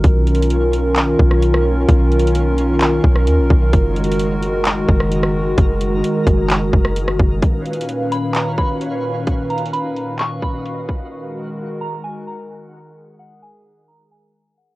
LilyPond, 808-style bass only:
\new Staff \with { instrumentName = "808-style bass" } { \clef bass \time 4/4 \key b \lydian \tempo 4 = 130 b,,2~ b,,8 b,,4. | b,,2~ b,,8 b,,8 dis,16 b,,16 b,,8 | fis,,2~ fis,,8 fis,,4. | fis,,4 r8 fis,,4 fis,,4 fis,,8 |
r1 | r1 | r1 | r1 | }